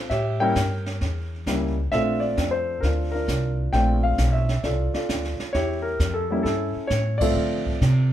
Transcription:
0.10 A2 G4 C#5 E5, brush sweep, kick, snare
0.40 G3 A#3 C#4 E4 A#4 C#5 G5
0.55 G2, kick, snare, hi-hat pedal
0.86 snare
1.01 E2, brush sweep, kick, snare
1.46 C#2 G3 A#3 C#4 E4, kick, snare, hi-hat pedal
1.92 A#1 A3 C4 D4 F4 A4 E5, brush sweep, kick, snare
2.20 D5
2.37 F2, kick, snare, hi-hat pedal
2.51 C5
2.81 D2 D4 F4 A#4, brush sweep, kick, snare
3.12 D4 F4 A#4
3.28 C2, kick, snare, hi-hat pedal
3.73 A#1 A3 C4 D4 F4 D5 G5, brush sweep, kick, snare
4.03 F5
4.18 B1, kick, snare, hi-hat pedal
4.33 E5
4.49 snare
4.63 C2 F4 A4 D5, brush sweep, kick, snare
4.93 F4 A4 D5, muted upright bass stroke, snare
5.09 D2, kick, snare, hi-hat pedal
5.24 snare
5.39 muted upright bass stroke, snare
5.53 E2 E4 G4 C#5, brush sweep, kick, snare
5.82 A#4
6.00 F2, kick, snare, hi-hat pedal
6.14 A4
6.31 G3 A#3 C#4 E4
6.43 G2 C#4 E4 A4, brush sweep, kick, snare
6.76 muted upright bass stroke
6.87 A2 C#5, kick, snare, hi-hat pedal
7.18 F3 F4 A4 D5, kick, ride
7.22 A3 C4 E5
7.36 D3, brush sweep
7.66 kick
7.81 C3, snare, hi-hat pedal

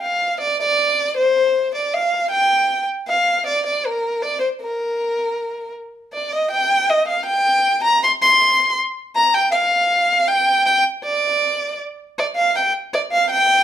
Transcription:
0.01 F5
0.41 D5
0.60 D5
1.17 C5
1.75 D5
1.94 F5
2.31 G5
3.08 F5
3.46 D5
3.66 D5
3.86 A#4
4.22 D5
4.40 C5
4.61 A#4
6.13 D5
6.32 D#5
6.51 G5
6.90 D#5
7.08 F5
7.26 G5
7.84 A#5
8.04 C6
8.22 C6
9.16 A#5
9.34 G5
9.51 F5
10.28 G5
10.66 G5
11.04 D5
12.18 D5
12.36 F5
12.56 G5
12.94 D5
13.12 F5
13.31 G5

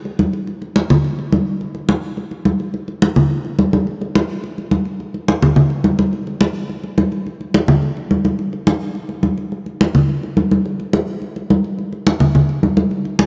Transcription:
0.05 high conga
0.19 high conga
0.33 high conga
0.47 high conga
0.62 high conga
0.76 high conga
0.90 high conga, low conga
1.04 high conga
1.19 high conga
1.33 high conga
1.61 high conga
1.75 high conga
1.89 high conga
2.17 high conga
2.31 high conga
2.45 high conga
2.60 high conga
2.74 high conga
2.88 high conga
3.02 high conga
3.16 high conga, low conga
3.30 high conga
3.45 high conga
3.59 high conga
3.73 high conga
3.87 high conga
4.01 high conga
4.15 high conga
4.44 high conga
4.58 high conga
4.71 high conga
4.85 high conga
5.00 high conga
5.14 high conga
5.28 high conga
5.42 high conga, low conga
5.56 high conga, low conga
5.70 high conga
5.84 high conga
5.99 high conga
6.13 high conga
6.27 high conga
6.41 high conga
6.70 high conga
6.84 high conga
6.98 high conga
7.12 high conga
7.27 high conga
7.41 high conga
7.54 high conga
7.68 high conga, low conga
7.82 high conga
7.97 high conga
8.11 high conga
8.25 high conga
8.39 high conga
8.53 high conga
8.67 high conga
8.95 high conga
9.09 high conga
9.23 high conga
9.38 high conga
9.52 high conga
9.66 high conga
9.81 high conga
9.95 high conga, low conga
10.09 high conga
10.23 high conga
10.37 high conga
10.51 high conga
10.66 high conga
10.80 high conga
10.93 high conga
11.22 high conga
11.36 high conga
11.50 high conga
11.64 high conga
11.79 high conga
11.93 high conga
12.07 high conga
12.20 high conga, low conga
12.35 high conga, low conga
12.49 high conga
12.63 high conga
12.77 high conga
12.91 high conga
13.05 high conga
13.19 high conga

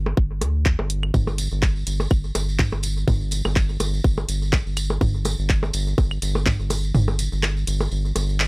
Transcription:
Already playing: G1
0.06 percussion blips
0.17 G1, kick
0.41 D2, closed hi-hat, percussion blips
0.66 kick, clap
0.79 G1, percussion blips
0.90 closed hi-hat
1.03 claves
1.14 G1, kick, mid tom, tambourine
1.27 tambourine, percussion blips
1.38 closed hi-hat, tambourine
1.51 G1, tambourine
1.62 kick, clap, tambourine, percussion blips
1.76 tambourine
1.87 G1, closed hi-hat, tambourine
2.00 tambourine, percussion blips
2.10 G1, kick, tambourine, claves
2.24 tambourine
2.35 G1, closed hi-hat, tambourine, percussion blips
2.49 tambourine
2.59 kick, clap, mid tom, tambourine
2.72 G1, tambourine, percussion blips
2.83 closed hi-hat, tambourine
2.97 tambourine
3.08 G1, kick, mid tom, tambourine, percussion blips
3.21 tambourine
3.31 closed hi-hat, tambourine
3.45 G1, tambourine, percussion blips, claves
3.56 kick, clap, tambourine
3.69 tambourine
3.80 G1, closed hi-hat, tambourine, percussion blips
3.94 tambourine
4.04 G1, kick, tambourine
4.17 tambourine, percussion blips
4.28 G1, closed hi-hat, tambourine
4.42 tambourine
4.53 kick, clap, tambourine, percussion blips
4.66 G1, tambourine
4.77 closed hi-hat, tambourine, claves
4.90 tambourine, percussion blips
5.01 G1, kick, mid tom, tambourine
5.15 tambourine
5.25 closed hi-hat, tambourine, percussion blips
5.39 G1, tambourine
5.50 kick, clap, tambourine
5.63 tambourine, percussion blips
5.73 G1, closed hi-hat, tambourine
5.87 tambourine
5.98 G1, kick, tambourine, percussion blips
6.11 tambourine, claves
6.22 G1, closed hi-hat, tambourine
6.35 tambourine, percussion blips
6.46 kick, clap, mid tom, tambourine
6.60 G1, tambourine
6.70 closed hi-hat, tambourine, percussion blips
6.84 tambourine
6.95 G1, mid tom, tambourine
7.08 tambourine, percussion blips
7.19 closed hi-hat, tambourine
7.32 G1, tambourine
7.43 clap, tambourine, percussion blips, claves
7.57 tambourine
7.67 G1, closed hi-hat, tambourine
7.81 tambourine, percussion blips
7.91 G1, tambourine
8.05 tambourine
8.16 G1, closed hi-hat, tambourine, percussion blips
8.29 tambourine
8.40 clap, tambourine

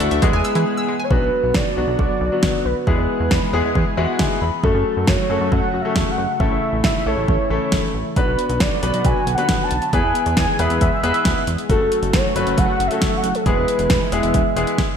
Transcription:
Already playing: E3 A3 D4 E4 F#4
0.00 D2 A4, closed hi-hat
0.11 D2 E5, closed hi-hat
0.22 E2 G#3 B3 E4 G#4, kick, closed hi-hat
0.33 E2 G#5
0.44 E6, closed hi-hat
0.55 E3 G#3, closed hi-hat
0.77 E6
0.88 G#3
1.00 G#5
1.04 C#5
1.11 B1 D3 F#3 B3 D4 F#4 B4, kick
1.22 B1
1.43 B1
1.54 B1 D5, kick, snare
1.77 B1 F#3 B3 D4 F#4
1.88 B1
1.99 B1 D5, kick
2.21 B1
2.32 F#3 B3 D4 F#4
2.43 A1, kick, snare
2.65 B1 B4
2.87 E2 E3 G#3 B3 E4 G#4 B4, kick
2.98 E2
3.20 E2
3.31 E2, kick, snare
3.53 E2 G#3 B3 E4 G#4
3.64 E2
3.75 E2, kick
3.97 E2 G#3 B3 E4 F#4 E5
4.05 F#5
4.19 D2 G#5, kick, snare
4.41 E2 B5
4.63 F#2 C#3 F#3 A3 C#4 F#4 A4, kick
4.75 F#2
4.97 F#2
5.07 F#2 C#5, kick, snare
5.30 F#2 A3 C#4 F#4 A4
5.41 F#2
5.52 F#2 F#5, kick
5.74 F#2
5.81 A3 C#4 F#4 A4 E5
5.96 E2, kick, snare
6.11 F#5
6.18 F#2
6.40 A1 E3 A3 C#4 E4 A4 E5, kick
6.51 A1
6.73 A1
6.84 A1 E5, kick, snare
7.06 A1 A3 C#4 E4 A4 C#5
7.17 A1
7.28 A1 C#5, kick
7.50 A1 A3 C#4 E4 A4 C#5
7.72 G#1, kick, snare
7.94 A1
8.16 B1 D3 F#3 B3 D4 F#4 B4, kick, closed hi-hat
8.28 B1
8.39 closed hi-hat
8.49 B1, closed hi-hat
8.60 B1 D5, kick, snare, closed hi-hat
8.83 B1 B3 D4 F#4 B4, closed hi-hat
8.94 B1, closed hi-hat
9.05 B1 G#5, kick, closed hi-hat
9.27 B1, closed hi-hat
9.34 B3 D4 F#4 B4 F#5, closed hi-hat
9.49 A1, kick, snare, closed hi-hat
9.64 A5
9.71 B1, closed hi-hat
9.82 closed hi-hat
9.93 E2 E3 G#3 B3 E4 G#4 B4 G#5, kick, closed hi-hat
10.04 E2
10.15 closed hi-hat
10.26 E2, closed hi-hat
10.37 E2 G#5, kick, snare, closed hi-hat
10.59 E2 B3 E4 G#4 B4 E5, closed hi-hat
10.70 E2, closed hi-hat
10.81 E2 E5, kick, closed hi-hat
11.03 E2 B3 E4 G#4 B4 E5, closed hi-hat
11.14 closed hi-hat
11.25 D2, kick, snare, closed hi-hat
11.47 E2, closed hi-hat
11.58 closed hi-hat
11.69 F#1 C#3 F#3 A3 C#4 F#4 A4, kick, closed hi-hat
11.81 F#1
11.92 closed hi-hat
12.03 F#1, closed hi-hat
12.13 F#1 C#5, kick, snare, closed hi-hat
12.36 F#1 A3 C#4 F#4 B4, closed hi-hat
12.47 F#1, closed hi-hat
12.58 F#1 F#5, kick, closed hi-hat
12.80 F#1, closed hi-hat
12.87 A3 C#4 F#4 A4 E5, closed hi-hat
13.02 E1, kick, snare, closed hi-hat
13.17 F#5
13.24 F#1, closed hi-hat
13.35 A4, closed hi-hat
13.46 E1 B2 E3 G#3 B3 E4 G#4 B4, kick, closed hi-hat
13.57 E1
13.68 closed hi-hat
13.79 E1, closed hi-hat
13.90 E1, kick, snare, closed hi-hat
14.12 E1 G#3 B3 E4 G#4 E5, closed hi-hat
14.23 E1, closed hi-hat
14.34 E1, kick, closed hi-hat
14.56 E1 G#3 B3 E4 G#4, closed hi-hat
14.67 closed hi-hat
14.78 kick, snare

